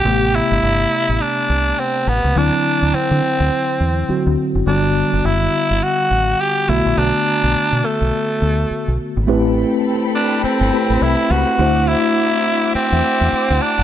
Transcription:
X:1
M:4/4
L:1/16
Q:"Swing 16ths" 1/4=104
K:Ador
V:1 name="String section"
z16 | z16 | z16 | z16 |
[CAgb]16 | [efd']16 |]
V:2 name="Tenor saxophone"
G2 E6 D4 C2 B,2 | D4 C8- C2 z2 | D4 E4 F4 G2 E2 | D6 A,8 z2 |
z6 D2 C4 E2 F2- | F2 E6 C6 D2 |]
V:3 name="Tine electric piano"
[C,A,B,G]16 | [D,F,CE]12 [D,F,CF]4 | [D,G,B,F]12- [D,G,B,F]2 [D,A,B,F]2- | [D,A,B,F]12- [D,A,B,F]2 z2 |
[A,CEGB]8- [A,CEGB]2 [A,CEGB]6 | [A,DEFc]16 |]
V:4 name="Fingered electric bass" clef=bass
A,,,3 G,,, G,,,2 z A,,, z2 C,,2 z2 A,,, ^C,, | D,, z2 D,, z D, z D,, z2 E,,2 z D,, z F,,, | G,,,3 F,,, F,,,2 z G,,, z2 A,,,2 z2 B,,, _B,,, | B,,, z2 B,,, z B,, z B,,, z2 D,,2 z B,,, z ^G,,, |
A,,,3 z6 G,,, z A,,, C,, z ^C,, z | D,,3 z6 E,, z E,, z D,, z F,,, |]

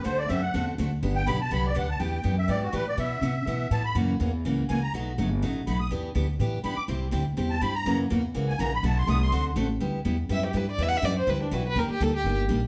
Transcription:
X:1
M:4/4
L:1/8
Q:"Swing" 1/4=246
K:G
V:1 name="Accordion"
c d e f2 z3 | z g b a b d f a | [K:Em] g3 e d F B d | e6 a b |
z6 ^g ^a | z6 b ^d' | z6 b d' | z4 z a b ^a- |
^a z4 ^g a b | a c' ^d' c'2 z3 | [K:G] z8 | z8 |
z8 |]
V:2 name="Violin"
z8 | z8 | [K:Em] z8 | z8 |
z8 | z8 | z8 | z8 |
z8 | z8 | [K:G] z4 e G B d | (3e f e d c B D F B |
_B G A G2 z3 |]
V:3 name="Steel-string acoustic guitar"
[D,A,CFA] z [D,A,CFA] z [D,A,CFA] z [D,A,CFA] z | [D,F,B,DG] z [D,F,B,DG] z [D,F,B,DG] z [D,F,B,DG] z | [K:Em] [E,B,DG] z [E,B,DG] z [E,B,DG] z [E,B,DG] z | [B,,E,B,EF] z [B,,E,B,EF] z [B,,E,B,EF] z [B,,E,B,EF] z |
[^C,E,^A,^CF] z [C,E,A,CF] z [C,E,A,CF] z [C,E,A,CF] z | [B,,F,A,^DF] z [B,,F,A,DF] z [B,,F,A,DF] z [B,,F,A,DF] z | [E,B,DG] z [E,B,DG] z [E,B,DG] z [E,B,DG] z | [C,G,CEG] z [C,G,CEG] z [C,G,CEG] z [C,G,CEG] z |
[^C,E,^A,^CF] z [C,E,A,CF] z [C,E,A,CF] z [C,E,A,CF] z | [B,,F,A,^DF] z [B,,F,A,DF] z [=D,A,CFA] z [D,A,CFA] z | [K:G] [G,B,EG] z [G,B,EG] z [G,B,EG] z [G,B,EG] z | [E,G,DEB] z [E,G,DEB] z [E,G,DEB] z [E,G,DEB] z |
[_E,G,_B,DG] z [E,G,B,DG] z [E,G,B,DG] z [E,G,B,DG] z |]
V:4 name="Upright bass" clef=bass
D,,2 F,,2 E,,2 D,,2 | G,,,2 B,,,2 C,,2 D,,2 | [K:Em] E,,2 F,,2 ^G,,2 A,,2 | B,,2 C,2 B,,2 A,,2 |
F,,2 E,,2 ^C,,2 C,,2 | B,,,2 G,,,2 A,,,2 B,,,2 | E,,2 D,,2 A,,2 G,, z | C,,2 D,,2 E,,2 G,,2 |
F,,2 E,,2 ^C,,2 ^A,,,2 | B,,,2 C,,2 D,,2 A,,,2 | [K:G] D,,2 E,,2 F,,2 G,,2 | E,,2 F,,2 D,,2 B,,,2 |
_E,, z D,,2 G,,,2 _B,,,2 |]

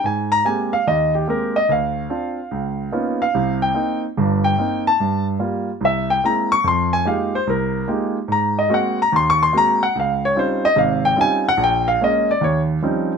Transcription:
X:1
M:4/4
L:1/8
Q:"Swing" 1/4=145
K:Ab
V:1 name="Grand piano"
a b a f e G B e | f6 z f- | f g2 z2 g2 =a- | =a z3 =e g b d' |
c' a f c B2 z2 | b e _g b (3c' d' c' b g | f d c e f g a _g | g f e =d _d z3 |]
V:2 name="Grand piano"
A,,2 [A,B,CG] z E,,2 [A,B,CG] z | =D,,2 [C=DF] z _D,,2 [B,_C_DEF] z | [C,,C,]2 [B,CE] z [G,,,G,,]2 [B,CE] z | G,,2 [G,B,F] z C,,2 [A,B,C=E] z |
F,,2 [A,B,EFG] z C,,2 [A,B,EFG] z | A,,2 [A,B,C_G] z E,,2 [A,B,CG] z | D,,2 [G,CDEF] z [A,,,C,]2 [G,CDEF] z | B,,,2 [A,B,D] z E,,2 [F,G,CDE] z |]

